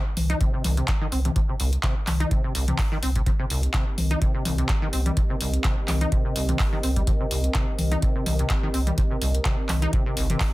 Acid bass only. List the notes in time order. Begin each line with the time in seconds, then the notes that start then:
0.30 D#4
0.41 C3
0.54 C3
0.64 C2
0.77 C3
1.01 D#3
1.12 C4
1.25 C3
1.36 C3
1.49 C3
1.60 C2
1.84 C3
2.20 D#4
2.31 C3
2.44 C3
2.55 C2
2.68 C3
2.92 D#3
3.03 C4
3.16 C3
3.26 C3
3.39 C3
3.50 C2
3.74 C3
4.11 D#4
4.22 C3
4.34 C3
4.45 C2
4.58 C3
4.82 D#3
4.93 C4
5.06 G3
5.17 C3
5.30 C3
5.41 C2
5.64 C3
6.01 D#4
6.12 C3
6.25 C3
6.36 C2
6.49 C3
6.73 D#3
6.83 C4
6.96 G3
7.07 C3
7.20 C3
7.31 C2
7.55 C3
7.92 D#4
8.02 C3
8.15 C3
8.26 C2
8.39 C3
8.63 D#3
8.74 C4
8.87 G3
8.98 C3
9.11 C3
9.21 C2
9.45 C3
9.82 D#4
9.93 C3
10.06 C3
10.17 C2
10.30 C3